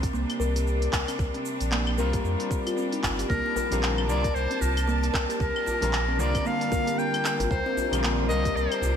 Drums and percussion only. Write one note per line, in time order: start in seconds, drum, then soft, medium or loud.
0.03 kick loud
0.03 open hi-hat medium
0.03 cabasa soft
0.15 cabasa soft
0.30 open hi-hat soft
0.30 claves medium
0.41 cabasa medium
0.56 open hi-hat medium
0.56 cabasa soft
0.67 cabasa soft
0.82 open hi-hat soft
0.93 kick loud
0.93 clap medium
0.93 cabasa medium
1.08 open hi-hat medium
1.08 cabasa soft
1.08 claves medium
1.19 kick loud
1.19 cabasa soft
1.34 open hi-hat soft
1.46 cabasa medium
1.61 open hi-hat medium
1.61 cabasa soft
1.72 clap medium
1.72 cabasa soft
1.87 claves medium
1.98 cabasa medium
2.13 kick loud
2.13 open hi-hat medium
2.13 cabasa soft
2.25 cabasa soft
2.40 open hi-hat soft
2.51 kick loud
2.51 cabasa medium
2.67 open hi-hat medium
2.67 cabasa soft
2.67 claves medium
2.78 cabasa soft
2.92 open hi-hat soft
3.03 kick medium
3.03 clap medium
3.03 cabasa medium
3.19 open hi-hat medium
3.19 cabasa soft
3.30 kick loud
3.30 cabasa soft
3.46 djembe slap soft
3.56 djembe slap medium
3.56 djembe tone soft
3.56 djembe bass medium
3.56 cabasa medium
3.72 open hi-hat medium
3.72 cabasa soft
3.83 clap medium
3.83 cabasa soft
3.98 claves medium
4.09 cabasa medium
4.24 kick loud
4.24 open hi-hat medium
4.24 cabasa soft
4.36 cabasa soft
4.51 open hi-hat soft
4.61 djembe bass medium
4.61 cabasa medium
4.77 open hi-hat medium
4.77 cabasa soft
4.77 claves medium
4.89 cabasa soft
5.03 open hi-hat soft
5.03 djembe slap medium
5.14 kick loud
5.14 clap medium
5.14 cabasa medium
5.30 open hi-hat medium
5.30 cabasa soft
5.40 kick loud
5.40 cabasa soft
5.56 djembe slap soft
5.56 claves medium
5.66 djembe slap medium
5.66 djembe bass medium
5.66 cabasa medium
5.82 open hi-hat medium
5.82 djembe tone medium
5.82 cabasa soft
5.93 clap medium
5.93 cabasa soft
6.19 djembe slap soft
6.19 cabasa medium
6.35 kick loud
6.35 open hi-hat medium
6.35 cabasa soft
6.35 claves medium
6.46 cabasa soft
6.61 open hi-hat soft
6.72 kick loud
6.72 djembe bass medium
6.72 cabasa medium
6.87 open hi-hat medium
6.87 cabasa soft
6.99 cabasa soft
7.14 open hi-hat soft
7.14 claves medium
7.25 clap medium
7.25 cabasa medium
7.40 open hi-hat medium
7.40 djembe bass medium
7.40 cabasa soft
7.51 kick loud
7.51 cabasa soft
7.66 djembe slap medium
7.77 djembe slap medium
7.77 djembe tone soft
7.77 djembe bass medium
7.77 cabasa medium
7.93 open hi-hat medium
7.93 cabasa soft
7.93 claves medium
8.04 clap medium
8.04 cabasa soft
8.30 cabasa medium
8.45 kick loud
8.45 open hi-hat medium
8.45 cabasa soft
8.57 cabasa soft
8.72 open hi-hat soft
8.72 claves medium
8.82 djembe bass medium
8.82 cabasa medium